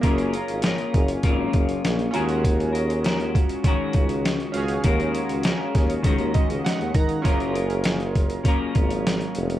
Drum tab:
HH |xxxxxxxxx-xxxxxx|xxxxxxxxx-xxxxxx|xxxxx-xxxxxxxxxx|xxxxxxxxx-xxxxxx|
SD |----o-------o---|----o-------o---|----o-o-----o---|----o-------o---|
BD |o-----o-o-o-----|o-----o-o-o-----|o-----o-o-o---o-|o-----o-o-o-----|